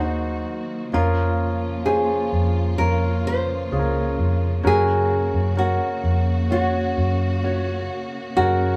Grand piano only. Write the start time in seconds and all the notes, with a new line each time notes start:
Already playing: G#4
0.00 D#4 F#4 C5
0.93 F3 C#4 F4 A#4
1.86 C#4 F4 C5
2.79 C#4 F4 A#4
3.72 C#4 F4 G#4
3.79 A#4
4.63 C#3 C#4 F#4 A#4
5.57 C#4 F#4 A#4
6.51 C#4 F#4 C#5
7.44 C#4 F#4 C#5
8.37 C#3 C#4 F#4 A#4